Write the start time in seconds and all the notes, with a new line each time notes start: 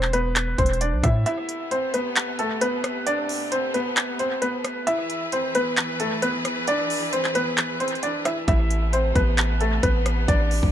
Already playing: E1 C4 C5
0.03 clap
0.13 B3 B4, closed hi-hat
0.36 clap, closed hi-hat
0.58 E1 C4 C5, kick, closed hi-hat
0.66 closed hi-hat
0.73 closed hi-hat
0.81 D4 D5, closed hi-hat
0.93 B1
1.03 A2 E4 E5, kick, cross-stick, closed hi-hat
1.26 C3 A3 B3 E4 E5, closed hi-hat
1.49 closed hi-hat
1.71 C4 C5, closed hi-hat
1.94 B3 B4, closed hi-hat
2.16 clap, closed hi-hat
2.39 A3 A4, closed hi-hat
2.61 B3 B4, closed hi-hat
2.84 cross-stick, closed hi-hat
3.07 B3 D4 D5, closed hi-hat
3.29 open hi-hat
3.52 C4 C5, closed hi-hat
3.74 B3 B4, closed hi-hat
3.97 clap, closed hi-hat
4.19 C4 C5, closed hi-hat
4.42 B3 B4, closed hi-hat
4.64 cross-stick, closed hi-hat
4.87 E3 E4 G#4 B4 E5, closed hi-hat
5.10 closed hi-hat
5.32 C4 C5, closed hi-hat
5.55 B3 B4, closed hi-hat
5.77 clap, closed hi-hat
6.00 A3 A4, closed hi-hat
6.22 B3 B4, closed hi-hat
6.45 cross-stick, closed hi-hat
6.67 D4 D5, closed hi-hat
6.90 open hi-hat
7.13 C4 C5, closed hi-hat
7.25 clap
7.35 B3 B4, closed hi-hat
7.58 clap, closed hi-hat
7.80 C4 C5, closed hi-hat
7.88 closed hi-hat
7.95 closed hi-hat
8.03 D4 D5, closed hi-hat
8.25 E4 E5, cross-stick, closed hi-hat
8.48 A1 C3 A3 B3 E4 E5, kick, closed hi-hat
8.71 closed hi-hat
8.93 C4 C5, closed hi-hat
9.16 A1 B3 B4, kick, closed hi-hat
9.38 clap, closed hi-hat
9.61 A3 A4, closed hi-hat
9.83 A1 B3 B4, kick, closed hi-hat
10.06 cross-stick, closed hi-hat
10.28 A1 G#3 D4 D5, kick, closed hi-hat
10.51 open hi-hat
10.63 A1, kick